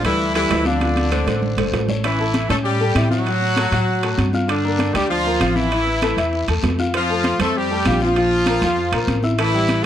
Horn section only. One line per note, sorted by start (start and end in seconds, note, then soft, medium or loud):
0.05 0.33 E3 medium
0.05 0.33 E4 loud
0.35 0.64 E3 medium
0.35 0.64 E4 loud
0.66 1.73 D3 medium
0.66 1.73 D4 medium
2.04 2.47 E3 medium
2.04 2.47 E4 loud
2.49 2.56 A3 medium
2.49 2.56 A4 medium
2.64 3.08 G3 medium
2.64 3.08 G4 loud
3.10 4.29 F#3 loud
3.10 4.29 F#4 loud
4.48 4.91 D3 medium
4.48 4.91 D4 medium
4.94 5.10 G3 medium
4.94 5.10 G4 loud
5.09 5.52 F3 medium
5.09 5.52 F4 loud
5.56 6.51 E3 medium
5.56 6.51 E4 loud
6.95 7.37 F3 loud
6.95 7.37 F4 loud
7.42 7.55 A3 medium
7.42 7.55 A4 loud
7.57 8.02 G3 loud
7.57 8.02 G4 loud
8.03 9.20 F3 loud
8.03 9.20 F4 loud
9.38 9.81 E3 loud
9.38 9.81 E4 loud